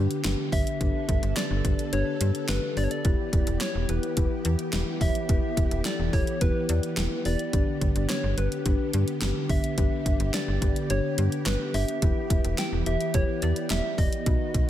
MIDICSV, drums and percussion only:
0, 0, Header, 1, 2, 480
1, 0, Start_track
1, 0, Tempo, 560748
1, 690, Time_signature, 4, 2, 24, 8
1, 12582, End_track
2, 0, Start_track
2, 0, Title_t, "Drums"
2, 90, Note_on_c, 9, 42, 51
2, 176, Note_off_c, 9, 42, 0
2, 209, Note_on_c, 9, 38, 112
2, 209, Note_on_c, 9, 39, 91
2, 209, Note_on_c, 9, 42, 70
2, 294, Note_off_c, 9, 42, 0
2, 295, Note_off_c, 9, 38, 0
2, 295, Note_off_c, 9, 39, 0
2, 448, Note_on_c, 9, 36, 103
2, 452, Note_on_c, 9, 46, 67
2, 534, Note_off_c, 9, 36, 0
2, 538, Note_off_c, 9, 46, 0
2, 573, Note_on_c, 9, 42, 53
2, 659, Note_off_c, 9, 42, 0
2, 690, Note_on_c, 9, 36, 110
2, 691, Note_on_c, 9, 42, 77
2, 776, Note_off_c, 9, 36, 0
2, 777, Note_off_c, 9, 42, 0
2, 930, Note_on_c, 9, 36, 100
2, 931, Note_on_c, 9, 42, 79
2, 1015, Note_off_c, 9, 36, 0
2, 1016, Note_off_c, 9, 42, 0
2, 1052, Note_on_c, 9, 42, 55
2, 1138, Note_off_c, 9, 42, 0
2, 1169, Note_on_c, 9, 38, 110
2, 1169, Note_on_c, 9, 39, 95
2, 1171, Note_on_c, 9, 42, 66
2, 1255, Note_off_c, 9, 38, 0
2, 1255, Note_off_c, 9, 39, 0
2, 1257, Note_off_c, 9, 42, 0
2, 1409, Note_on_c, 9, 36, 91
2, 1410, Note_on_c, 9, 42, 69
2, 1494, Note_off_c, 9, 36, 0
2, 1495, Note_off_c, 9, 42, 0
2, 1533, Note_on_c, 9, 42, 48
2, 1619, Note_off_c, 9, 42, 0
2, 1650, Note_on_c, 9, 42, 83
2, 1736, Note_off_c, 9, 42, 0
2, 1889, Note_on_c, 9, 42, 87
2, 1974, Note_off_c, 9, 42, 0
2, 2010, Note_on_c, 9, 42, 50
2, 2095, Note_off_c, 9, 42, 0
2, 2127, Note_on_c, 9, 38, 111
2, 2127, Note_on_c, 9, 39, 93
2, 2127, Note_on_c, 9, 42, 69
2, 2212, Note_off_c, 9, 42, 0
2, 2213, Note_off_c, 9, 38, 0
2, 2213, Note_off_c, 9, 39, 0
2, 2370, Note_on_c, 9, 46, 69
2, 2455, Note_off_c, 9, 46, 0
2, 2490, Note_on_c, 9, 42, 53
2, 2576, Note_off_c, 9, 42, 0
2, 2608, Note_on_c, 9, 42, 75
2, 2609, Note_on_c, 9, 36, 109
2, 2694, Note_off_c, 9, 42, 0
2, 2695, Note_off_c, 9, 36, 0
2, 2849, Note_on_c, 9, 36, 101
2, 2850, Note_on_c, 9, 42, 76
2, 2935, Note_off_c, 9, 36, 0
2, 2936, Note_off_c, 9, 42, 0
2, 2970, Note_on_c, 9, 42, 57
2, 3055, Note_off_c, 9, 42, 0
2, 3088, Note_on_c, 9, 38, 116
2, 3088, Note_on_c, 9, 39, 92
2, 3090, Note_on_c, 9, 42, 70
2, 3173, Note_off_c, 9, 38, 0
2, 3173, Note_off_c, 9, 39, 0
2, 3176, Note_off_c, 9, 42, 0
2, 3329, Note_on_c, 9, 42, 69
2, 3414, Note_off_c, 9, 42, 0
2, 3451, Note_on_c, 9, 42, 48
2, 3536, Note_off_c, 9, 42, 0
2, 3568, Note_on_c, 9, 42, 82
2, 3570, Note_on_c, 9, 36, 97
2, 3653, Note_off_c, 9, 42, 0
2, 3656, Note_off_c, 9, 36, 0
2, 3808, Note_on_c, 9, 42, 84
2, 3894, Note_off_c, 9, 42, 0
2, 3928, Note_on_c, 9, 42, 52
2, 4013, Note_off_c, 9, 42, 0
2, 4046, Note_on_c, 9, 42, 66
2, 4047, Note_on_c, 9, 38, 111
2, 4047, Note_on_c, 9, 39, 91
2, 4132, Note_off_c, 9, 38, 0
2, 4132, Note_off_c, 9, 39, 0
2, 4132, Note_off_c, 9, 42, 0
2, 4287, Note_on_c, 9, 36, 105
2, 4289, Note_on_c, 9, 46, 67
2, 4373, Note_off_c, 9, 36, 0
2, 4375, Note_off_c, 9, 46, 0
2, 4410, Note_on_c, 9, 42, 53
2, 4495, Note_off_c, 9, 42, 0
2, 4529, Note_on_c, 9, 36, 109
2, 4529, Note_on_c, 9, 42, 77
2, 4615, Note_off_c, 9, 36, 0
2, 4615, Note_off_c, 9, 42, 0
2, 4769, Note_on_c, 9, 36, 97
2, 4771, Note_on_c, 9, 42, 76
2, 4854, Note_off_c, 9, 36, 0
2, 4856, Note_off_c, 9, 42, 0
2, 4891, Note_on_c, 9, 42, 55
2, 4977, Note_off_c, 9, 42, 0
2, 5008, Note_on_c, 9, 38, 109
2, 5008, Note_on_c, 9, 39, 92
2, 5010, Note_on_c, 9, 42, 66
2, 5094, Note_off_c, 9, 38, 0
2, 5094, Note_off_c, 9, 39, 0
2, 5096, Note_off_c, 9, 42, 0
2, 5248, Note_on_c, 9, 36, 91
2, 5249, Note_on_c, 9, 46, 50
2, 5334, Note_off_c, 9, 36, 0
2, 5335, Note_off_c, 9, 46, 0
2, 5370, Note_on_c, 9, 42, 47
2, 5456, Note_off_c, 9, 42, 0
2, 5488, Note_on_c, 9, 42, 83
2, 5490, Note_on_c, 9, 36, 97
2, 5573, Note_off_c, 9, 42, 0
2, 5575, Note_off_c, 9, 36, 0
2, 5727, Note_on_c, 9, 42, 86
2, 5812, Note_off_c, 9, 42, 0
2, 5849, Note_on_c, 9, 42, 54
2, 5934, Note_off_c, 9, 42, 0
2, 5966, Note_on_c, 9, 42, 68
2, 5967, Note_on_c, 9, 38, 114
2, 5967, Note_on_c, 9, 39, 96
2, 6052, Note_off_c, 9, 38, 0
2, 6052, Note_off_c, 9, 39, 0
2, 6052, Note_off_c, 9, 42, 0
2, 6208, Note_on_c, 9, 46, 66
2, 6293, Note_off_c, 9, 46, 0
2, 6329, Note_on_c, 9, 42, 51
2, 6414, Note_off_c, 9, 42, 0
2, 6448, Note_on_c, 9, 42, 74
2, 6449, Note_on_c, 9, 36, 110
2, 6534, Note_off_c, 9, 42, 0
2, 6535, Note_off_c, 9, 36, 0
2, 6689, Note_on_c, 9, 36, 99
2, 6690, Note_on_c, 9, 42, 74
2, 6774, Note_off_c, 9, 36, 0
2, 6775, Note_off_c, 9, 42, 0
2, 6811, Note_on_c, 9, 42, 55
2, 6896, Note_off_c, 9, 42, 0
2, 6929, Note_on_c, 9, 38, 110
2, 6929, Note_on_c, 9, 39, 93
2, 6931, Note_on_c, 9, 42, 68
2, 7014, Note_off_c, 9, 38, 0
2, 7014, Note_off_c, 9, 39, 0
2, 7017, Note_off_c, 9, 42, 0
2, 7170, Note_on_c, 9, 42, 69
2, 7256, Note_off_c, 9, 42, 0
2, 7292, Note_on_c, 9, 42, 50
2, 7378, Note_off_c, 9, 42, 0
2, 7409, Note_on_c, 9, 42, 82
2, 7411, Note_on_c, 9, 36, 98
2, 7495, Note_off_c, 9, 42, 0
2, 7496, Note_off_c, 9, 36, 0
2, 7648, Note_on_c, 9, 42, 88
2, 7734, Note_off_c, 9, 42, 0
2, 7769, Note_on_c, 9, 42, 51
2, 7855, Note_off_c, 9, 42, 0
2, 7887, Note_on_c, 9, 42, 69
2, 7888, Note_on_c, 9, 38, 110
2, 7888, Note_on_c, 9, 39, 92
2, 7973, Note_off_c, 9, 38, 0
2, 7973, Note_off_c, 9, 39, 0
2, 7973, Note_off_c, 9, 42, 0
2, 8127, Note_on_c, 9, 36, 106
2, 8128, Note_on_c, 9, 46, 64
2, 8213, Note_off_c, 9, 36, 0
2, 8214, Note_off_c, 9, 46, 0
2, 8250, Note_on_c, 9, 42, 53
2, 8336, Note_off_c, 9, 42, 0
2, 8369, Note_on_c, 9, 42, 77
2, 8370, Note_on_c, 9, 36, 110
2, 8455, Note_off_c, 9, 36, 0
2, 8455, Note_off_c, 9, 42, 0
2, 8609, Note_on_c, 9, 36, 101
2, 8611, Note_on_c, 9, 42, 78
2, 8695, Note_off_c, 9, 36, 0
2, 8697, Note_off_c, 9, 42, 0
2, 8731, Note_on_c, 9, 42, 57
2, 8817, Note_off_c, 9, 42, 0
2, 8849, Note_on_c, 9, 38, 110
2, 8849, Note_on_c, 9, 39, 91
2, 8852, Note_on_c, 9, 42, 65
2, 8935, Note_off_c, 9, 38, 0
2, 8935, Note_off_c, 9, 39, 0
2, 8937, Note_off_c, 9, 42, 0
2, 9089, Note_on_c, 9, 36, 92
2, 9090, Note_on_c, 9, 42, 71
2, 9175, Note_off_c, 9, 36, 0
2, 9176, Note_off_c, 9, 42, 0
2, 9212, Note_on_c, 9, 42, 49
2, 9298, Note_off_c, 9, 42, 0
2, 9330, Note_on_c, 9, 42, 81
2, 9416, Note_off_c, 9, 42, 0
2, 9570, Note_on_c, 9, 42, 89
2, 9655, Note_off_c, 9, 42, 0
2, 9692, Note_on_c, 9, 42, 52
2, 9778, Note_off_c, 9, 42, 0
2, 9809, Note_on_c, 9, 42, 69
2, 9810, Note_on_c, 9, 38, 114
2, 9810, Note_on_c, 9, 39, 93
2, 9895, Note_off_c, 9, 38, 0
2, 9895, Note_off_c, 9, 39, 0
2, 9895, Note_off_c, 9, 42, 0
2, 10051, Note_on_c, 9, 46, 67
2, 10137, Note_off_c, 9, 46, 0
2, 10173, Note_on_c, 9, 42, 53
2, 10259, Note_off_c, 9, 42, 0
2, 10291, Note_on_c, 9, 36, 109
2, 10291, Note_on_c, 9, 42, 78
2, 10376, Note_off_c, 9, 36, 0
2, 10376, Note_off_c, 9, 42, 0
2, 10530, Note_on_c, 9, 36, 98
2, 10532, Note_on_c, 9, 42, 77
2, 10616, Note_off_c, 9, 36, 0
2, 10618, Note_off_c, 9, 42, 0
2, 10653, Note_on_c, 9, 42, 57
2, 10739, Note_off_c, 9, 42, 0
2, 10770, Note_on_c, 9, 38, 108
2, 10770, Note_on_c, 9, 39, 92
2, 10772, Note_on_c, 9, 42, 68
2, 10856, Note_off_c, 9, 38, 0
2, 10856, Note_off_c, 9, 39, 0
2, 10858, Note_off_c, 9, 42, 0
2, 11011, Note_on_c, 9, 42, 70
2, 11096, Note_off_c, 9, 42, 0
2, 11133, Note_on_c, 9, 42, 50
2, 11218, Note_off_c, 9, 42, 0
2, 11248, Note_on_c, 9, 42, 81
2, 11251, Note_on_c, 9, 36, 98
2, 11334, Note_off_c, 9, 42, 0
2, 11336, Note_off_c, 9, 36, 0
2, 11488, Note_on_c, 9, 42, 87
2, 11574, Note_off_c, 9, 42, 0
2, 11609, Note_on_c, 9, 42, 53
2, 11694, Note_off_c, 9, 42, 0
2, 11728, Note_on_c, 9, 38, 112
2, 11728, Note_on_c, 9, 39, 91
2, 11728, Note_on_c, 9, 42, 72
2, 11813, Note_off_c, 9, 42, 0
2, 11814, Note_off_c, 9, 38, 0
2, 11814, Note_off_c, 9, 39, 0
2, 11968, Note_on_c, 9, 36, 104
2, 11971, Note_on_c, 9, 46, 68
2, 12054, Note_off_c, 9, 36, 0
2, 12056, Note_off_c, 9, 46, 0
2, 12091, Note_on_c, 9, 42, 54
2, 12177, Note_off_c, 9, 42, 0
2, 12209, Note_on_c, 9, 42, 75
2, 12210, Note_on_c, 9, 36, 108
2, 12295, Note_off_c, 9, 42, 0
2, 12296, Note_off_c, 9, 36, 0
2, 12449, Note_on_c, 9, 36, 98
2, 12450, Note_on_c, 9, 42, 77
2, 12535, Note_off_c, 9, 36, 0
2, 12536, Note_off_c, 9, 42, 0
2, 12582, End_track
0, 0, End_of_file